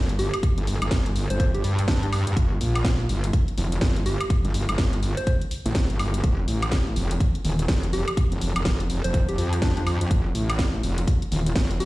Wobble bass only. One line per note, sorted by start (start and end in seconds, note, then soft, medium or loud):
0.00 0.31 G1 loud
0.58 0.79 G1 medium
0.82 0.90 G1 medium
0.91 1.28 G1 loud
1.30 1.62 G1 medium
1.64 1.87 G2 medium
1.88 2.25 G2 medium
2.27 2.35 G2 loud
2.37 2.59 G1 medium
2.61 3.08 A#1 medium
3.09 3.32 G1 loud
3.58 3.80 F1 medium
3.82 4.18 G1 medium
4.45 4.67 G1 medium
4.69 4.77 G1 loud
4.78 5.15 G1 medium
5.66 5.88 A1 loud
5.90 6.22 G1 loud
6.24 6.46 F1 medium
6.48 6.95 A1 medium
6.96 7.19 F1 medium
7.45 7.67 D#1 medium
7.69 8.05 F1 loud
8.32 8.54 F1 medium
8.56 8.64 F1 loud
8.66 9.02 F1 loud
9.04 9.37 F1 medium
9.38 9.61 F2 loud
9.62 9.99 F2 medium
10.01 10.09 F2 loud
10.11 10.33 F1 loud
10.35 10.82 A1 medium
10.83 11.06 F1 loud
11.32 11.54 D#1 loud
11.56 11.85 F1 medium